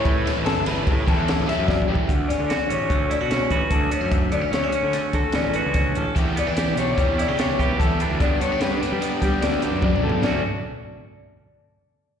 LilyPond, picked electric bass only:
\new Staff \with { instrumentName = "Picked electric bass" } { \clef bass \time 5/4 \key d \major \tempo 4 = 147 a,8. a,,8 g,,8. a,8 e,8. a,,16 r16 fis,8. a,,16 r16 | d,8 r16 d8 r16 a,,8 d,8. b,8. a,,16 r16 d,8 r16 fis,16~ | fis,8 d,16 r16 d,8 r16 d8 r16 d16 r16 a,,8. cis,8. a,,16 r16 | e,8 r16 e8 r16 b,,8 e,8. cis8. b,,16 r16 e,8 r16 d,16 |
g,8 g,16 r16 g,8 r16 g8 r16 g16 r16 d,8. fis,8. d,16 r16 | d,8 r1 r8 | }